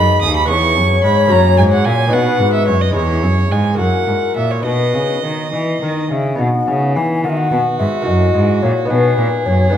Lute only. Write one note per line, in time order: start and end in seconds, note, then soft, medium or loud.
0.00 0.20 F#2 medium
0.00 0.44 B3 soft
0.00 0.46 D#4 soft
0.00 0.46 G#4 soft
0.23 0.47 D#2 medium
0.45 0.74 B3 soft
0.45 1.27 E4 soft
0.45 1.28 G#4 soft
0.50 0.74 E2 soft
0.77 1.01 F#2 medium
1.04 1.28 G#2 medium
1.26 1.55 A#3 soft
1.26 1.56 C#4 soft
1.26 2.09 F#4 soft
1.31 1.55 F#2 soft
1.58 1.82 G#2 soft
1.85 2.10 A#2 medium
2.08 2.90 B3 soft
2.08 2.91 D#4 soft
2.08 2.91 F#4 soft
2.12 2.37 B2 medium
2.40 2.64 G#2 medium
2.68 2.92 F#2 soft
2.91 3.20 G#3 soft
2.91 3.75 E4 soft
2.91 3.76 G#4 soft
2.95 3.20 E2 soft
3.23 3.48 F#2 soft
3.51 3.76 G#2 soft
3.75 4.04 A#3 soft
3.75 4.61 E4 soft
3.75 4.62 F#4 soft
3.79 4.05 F#2 soft
4.08 4.34 G#2 soft
4.36 4.62 A#2 soft
4.61 6.34 B3 soft
4.61 6.35 D#4 soft
4.61 6.35 F#4 soft
4.65 4.92 B2 soft
4.95 5.21 C#3 soft
5.24 5.50 D#3 soft
5.53 5.79 E3 soft
5.82 6.09 D#3 soft
6.11 6.37 C#3 soft
6.35 8.01 B3 soft
6.35 8.02 D#4 soft
6.35 8.03 F#4 soft
6.40 6.65 B2 soft
6.68 6.93 C#3 soft
6.96 7.22 E3 medium
7.24 7.49 D#3 soft
7.52 7.77 B2 medium
7.79 8.04 G#2 soft
8.02 8.31 A#3 soft
8.02 8.86 E4 soft
8.02 8.87 F#4 soft
8.06 8.32 F#2 soft
8.34 8.60 G#2 soft
8.63 8.88 A#2 soft
8.85 9.69 B3 soft
8.85 9.69 D#4 soft
8.85 9.71 F#4 soft
8.90 9.15 B2 soft
9.18 9.43 A#2 medium
9.46 9.71 F#2 medium
9.70 9.77 B3 soft
9.70 9.77 D#4 soft
9.70 9.77 G#4 soft
9.74 9.77 G#2 medium